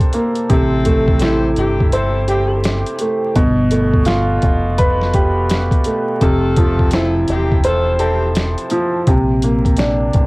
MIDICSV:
0, 0, Header, 1, 5, 480
1, 0, Start_track
1, 0, Key_signature, 0, "minor"
1, 0, Tempo, 714286
1, 337, Time_signature, 4, 2, 24, 8
1, 6899, End_track
2, 0, Start_track
2, 0, Title_t, "Saxophone section"
2, 0, Program_c, 0, 65
2, 345, Note_on_c, 0, 60, 110
2, 345, Note_on_c, 0, 64, 106
2, 345, Note_on_c, 0, 69, 111
2, 794, Note_off_c, 0, 60, 0
2, 794, Note_off_c, 0, 64, 0
2, 794, Note_off_c, 0, 69, 0
2, 808, Note_on_c, 0, 67, 93
2, 808, Note_on_c, 0, 69, 94
2, 808, Note_on_c, 0, 72, 97
2, 1004, Note_off_c, 0, 67, 0
2, 1004, Note_off_c, 0, 69, 0
2, 1004, Note_off_c, 0, 72, 0
2, 1061, Note_on_c, 0, 60, 89
2, 1061, Note_on_c, 0, 64, 88
2, 1061, Note_on_c, 0, 67, 98
2, 1251, Note_off_c, 0, 60, 0
2, 1251, Note_off_c, 0, 64, 0
2, 1251, Note_off_c, 0, 67, 0
2, 1300, Note_on_c, 0, 60, 102
2, 1300, Note_on_c, 0, 64, 98
2, 1300, Note_on_c, 0, 69, 109
2, 1491, Note_off_c, 0, 60, 0
2, 1491, Note_off_c, 0, 64, 0
2, 1491, Note_off_c, 0, 69, 0
2, 1542, Note_on_c, 0, 60, 87
2, 1542, Note_on_c, 0, 67, 93
2, 1543, Note_on_c, 0, 64, 79
2, 1732, Note_off_c, 0, 60, 0
2, 1732, Note_off_c, 0, 64, 0
2, 1732, Note_off_c, 0, 67, 0
2, 4175, Note_on_c, 0, 65, 109
2, 4175, Note_on_c, 0, 69, 123
2, 4176, Note_on_c, 0, 57, 110
2, 4629, Note_off_c, 0, 65, 0
2, 4629, Note_off_c, 0, 69, 0
2, 4630, Note_off_c, 0, 57, 0
2, 4657, Note_on_c, 0, 65, 91
2, 4657, Note_on_c, 0, 69, 92
2, 4657, Note_on_c, 0, 72, 95
2, 4849, Note_off_c, 0, 65, 0
2, 4849, Note_off_c, 0, 69, 0
2, 4849, Note_off_c, 0, 72, 0
2, 4909, Note_on_c, 0, 60, 86
2, 4909, Note_on_c, 0, 64, 88
2, 4909, Note_on_c, 0, 67, 98
2, 5096, Note_off_c, 0, 60, 0
2, 5096, Note_off_c, 0, 64, 0
2, 5096, Note_off_c, 0, 67, 0
2, 5149, Note_on_c, 0, 69, 110
2, 5150, Note_on_c, 0, 57, 91
2, 5150, Note_on_c, 0, 65, 99
2, 5336, Note_off_c, 0, 57, 0
2, 5336, Note_off_c, 0, 65, 0
2, 5336, Note_off_c, 0, 69, 0
2, 5375, Note_on_c, 0, 60, 88
2, 5375, Note_on_c, 0, 64, 86
2, 5375, Note_on_c, 0, 67, 94
2, 5568, Note_off_c, 0, 60, 0
2, 5568, Note_off_c, 0, 64, 0
2, 5568, Note_off_c, 0, 67, 0
2, 6899, End_track
3, 0, Start_track
3, 0, Title_t, "Upright piano"
3, 0, Program_c, 1, 0
3, 0, Control_c, 1, 64, 127
3, 0, Note_on_c, 1, 62, 94
3, 0, Note_on_c, 1, 69, 86
3, 0, Note_on_c, 1, 72, 104
3, 94, Note_off_c, 1, 62, 0
3, 94, Note_on_c, 1, 58, 83
3, 334, Note_on_c, 1, 48, 100
3, 336, Note_off_c, 1, 58, 0
3, 337, Note_off_c, 1, 69, 0
3, 337, Note_off_c, 1, 72, 0
3, 345, Control_c, 1, 64, 0
3, 470, Control_c, 1, 64, 127
3, 575, Note_on_c, 1, 57, 92
3, 824, Note_on_c, 1, 64, 85
3, 1296, Note_on_c, 1, 72, 93
3, 1531, Note_on_c, 1, 67, 80
3, 1535, Note_off_c, 1, 48, 0
3, 1776, Note_off_c, 1, 57, 0
3, 2020, Note_off_c, 1, 64, 0
3, 2021, Note_on_c, 1, 57, 77
3, 2254, Note_off_c, 1, 67, 0
3, 2257, Note_off_c, 1, 72, 0
3, 2257, Note_on_c, 1, 47, 103
3, 2259, Note_off_c, 1, 57, 0
3, 2265, Control_c, 1, 64, 0
3, 2373, Control_c, 1, 64, 127
3, 2496, Note_on_c, 1, 57, 74
3, 2731, Note_on_c, 1, 65, 95
3, 3215, Note_on_c, 1, 71, 99
3, 3456, Note_on_c, 1, 67, 85
3, 3457, Note_off_c, 1, 47, 0
3, 3696, Note_off_c, 1, 57, 0
3, 3934, Note_off_c, 1, 65, 0
3, 3938, Note_on_c, 1, 57, 73
3, 4176, Note_off_c, 1, 67, 0
3, 4176, Note_off_c, 1, 71, 0
3, 4178, Note_off_c, 1, 57, 0
3, 4180, Note_on_c, 1, 48, 96
3, 4184, Control_c, 1, 64, 0
3, 4285, Control_c, 1, 64, 127
3, 4418, Note_on_c, 1, 53, 78
3, 4661, Note_on_c, 1, 64, 94
3, 5138, Note_on_c, 1, 72, 104
3, 5373, Note_on_c, 1, 69, 82
3, 5379, Note_off_c, 1, 48, 0
3, 5618, Note_off_c, 1, 53, 0
3, 5855, Note_on_c, 1, 53, 83
3, 5859, Note_off_c, 1, 64, 0
3, 6095, Note_off_c, 1, 69, 0
3, 6096, Note_off_c, 1, 53, 0
3, 6097, Note_on_c, 1, 48, 94
3, 6098, Note_off_c, 1, 72, 0
3, 6107, Control_c, 1, 64, 0
3, 6218, Control_c, 1, 64, 127
3, 6340, Note_on_c, 1, 58, 77
3, 6572, Note_on_c, 1, 62, 89
3, 6899, Note_off_c, 1, 48, 0
3, 6899, Note_off_c, 1, 58, 0
3, 6899, Note_off_c, 1, 62, 0
3, 6899, End_track
4, 0, Start_track
4, 0, Title_t, "Fingered electric bass"
4, 0, Program_c, 2, 33
4, 337, Note_on_c, 2, 33, 101
4, 1030, Note_off_c, 2, 33, 0
4, 1060, Note_on_c, 2, 31, 95
4, 1900, Note_off_c, 2, 31, 0
4, 2258, Note_on_c, 2, 31, 118
4, 2951, Note_off_c, 2, 31, 0
4, 2979, Note_on_c, 2, 29, 99
4, 3819, Note_off_c, 2, 29, 0
4, 4178, Note_on_c, 2, 29, 108
4, 4870, Note_off_c, 2, 29, 0
4, 4900, Note_on_c, 2, 28, 98
4, 5740, Note_off_c, 2, 28, 0
4, 6098, Note_on_c, 2, 34, 114
4, 6790, Note_off_c, 2, 34, 0
4, 6819, Note_on_c, 2, 33, 98
4, 6899, Note_off_c, 2, 33, 0
4, 6899, End_track
5, 0, Start_track
5, 0, Title_t, "Drums"
5, 0, Note_on_c, 9, 36, 100
5, 3, Note_on_c, 9, 42, 56
5, 66, Note_off_c, 9, 36, 0
5, 70, Note_off_c, 9, 42, 0
5, 85, Note_on_c, 9, 42, 86
5, 153, Note_off_c, 9, 42, 0
5, 238, Note_on_c, 9, 42, 59
5, 305, Note_off_c, 9, 42, 0
5, 334, Note_on_c, 9, 42, 87
5, 336, Note_on_c, 9, 36, 126
5, 401, Note_off_c, 9, 42, 0
5, 403, Note_off_c, 9, 36, 0
5, 572, Note_on_c, 9, 42, 85
5, 577, Note_on_c, 9, 36, 100
5, 639, Note_off_c, 9, 42, 0
5, 644, Note_off_c, 9, 36, 0
5, 725, Note_on_c, 9, 36, 96
5, 792, Note_off_c, 9, 36, 0
5, 802, Note_on_c, 9, 42, 94
5, 820, Note_on_c, 9, 38, 99
5, 870, Note_off_c, 9, 42, 0
5, 887, Note_off_c, 9, 38, 0
5, 1050, Note_on_c, 9, 42, 71
5, 1117, Note_off_c, 9, 42, 0
5, 1212, Note_on_c, 9, 36, 87
5, 1279, Note_off_c, 9, 36, 0
5, 1292, Note_on_c, 9, 42, 102
5, 1359, Note_off_c, 9, 42, 0
5, 1531, Note_on_c, 9, 42, 79
5, 1598, Note_off_c, 9, 42, 0
5, 1772, Note_on_c, 9, 42, 106
5, 1783, Note_on_c, 9, 38, 110
5, 1839, Note_off_c, 9, 42, 0
5, 1850, Note_off_c, 9, 38, 0
5, 1925, Note_on_c, 9, 42, 57
5, 1992, Note_off_c, 9, 42, 0
5, 2007, Note_on_c, 9, 42, 89
5, 2074, Note_off_c, 9, 42, 0
5, 2255, Note_on_c, 9, 42, 90
5, 2256, Note_on_c, 9, 36, 127
5, 2322, Note_off_c, 9, 42, 0
5, 2323, Note_off_c, 9, 36, 0
5, 2492, Note_on_c, 9, 42, 85
5, 2559, Note_off_c, 9, 42, 0
5, 2645, Note_on_c, 9, 36, 94
5, 2712, Note_off_c, 9, 36, 0
5, 2723, Note_on_c, 9, 42, 90
5, 2740, Note_on_c, 9, 38, 99
5, 2790, Note_off_c, 9, 42, 0
5, 2808, Note_off_c, 9, 38, 0
5, 2970, Note_on_c, 9, 42, 69
5, 2977, Note_on_c, 9, 36, 101
5, 3038, Note_off_c, 9, 42, 0
5, 3044, Note_off_c, 9, 36, 0
5, 3213, Note_on_c, 9, 42, 104
5, 3220, Note_on_c, 9, 36, 97
5, 3281, Note_off_c, 9, 42, 0
5, 3288, Note_off_c, 9, 36, 0
5, 3370, Note_on_c, 9, 38, 35
5, 3437, Note_off_c, 9, 38, 0
5, 3451, Note_on_c, 9, 42, 81
5, 3454, Note_on_c, 9, 36, 92
5, 3518, Note_off_c, 9, 42, 0
5, 3522, Note_off_c, 9, 36, 0
5, 3693, Note_on_c, 9, 42, 106
5, 3703, Note_on_c, 9, 38, 110
5, 3760, Note_off_c, 9, 42, 0
5, 3770, Note_off_c, 9, 38, 0
5, 3839, Note_on_c, 9, 36, 104
5, 3844, Note_on_c, 9, 42, 57
5, 3906, Note_off_c, 9, 36, 0
5, 3911, Note_off_c, 9, 42, 0
5, 3926, Note_on_c, 9, 42, 85
5, 3993, Note_off_c, 9, 42, 0
5, 4174, Note_on_c, 9, 42, 86
5, 4176, Note_on_c, 9, 36, 123
5, 4242, Note_off_c, 9, 42, 0
5, 4243, Note_off_c, 9, 36, 0
5, 4412, Note_on_c, 9, 42, 86
5, 4417, Note_on_c, 9, 36, 106
5, 4479, Note_off_c, 9, 42, 0
5, 4484, Note_off_c, 9, 36, 0
5, 4565, Note_on_c, 9, 36, 96
5, 4632, Note_off_c, 9, 36, 0
5, 4643, Note_on_c, 9, 42, 92
5, 4660, Note_on_c, 9, 38, 99
5, 4710, Note_off_c, 9, 42, 0
5, 4727, Note_off_c, 9, 38, 0
5, 4890, Note_on_c, 9, 42, 70
5, 4957, Note_off_c, 9, 42, 0
5, 5051, Note_on_c, 9, 36, 87
5, 5119, Note_off_c, 9, 36, 0
5, 5132, Note_on_c, 9, 42, 100
5, 5199, Note_off_c, 9, 42, 0
5, 5370, Note_on_c, 9, 42, 80
5, 5437, Note_off_c, 9, 42, 0
5, 5613, Note_on_c, 9, 42, 104
5, 5623, Note_on_c, 9, 38, 112
5, 5680, Note_off_c, 9, 42, 0
5, 5690, Note_off_c, 9, 38, 0
5, 5765, Note_on_c, 9, 42, 56
5, 5832, Note_off_c, 9, 42, 0
5, 5846, Note_on_c, 9, 42, 87
5, 5914, Note_off_c, 9, 42, 0
5, 6095, Note_on_c, 9, 42, 85
5, 6096, Note_on_c, 9, 36, 127
5, 6162, Note_off_c, 9, 42, 0
5, 6163, Note_off_c, 9, 36, 0
5, 6332, Note_on_c, 9, 42, 87
5, 6399, Note_off_c, 9, 42, 0
5, 6485, Note_on_c, 9, 36, 97
5, 6489, Note_on_c, 9, 42, 58
5, 6552, Note_off_c, 9, 36, 0
5, 6556, Note_off_c, 9, 42, 0
5, 6563, Note_on_c, 9, 42, 92
5, 6580, Note_on_c, 9, 38, 99
5, 6630, Note_off_c, 9, 42, 0
5, 6647, Note_off_c, 9, 38, 0
5, 6810, Note_on_c, 9, 42, 71
5, 6817, Note_on_c, 9, 36, 104
5, 6877, Note_off_c, 9, 42, 0
5, 6884, Note_off_c, 9, 36, 0
5, 6899, End_track
0, 0, End_of_file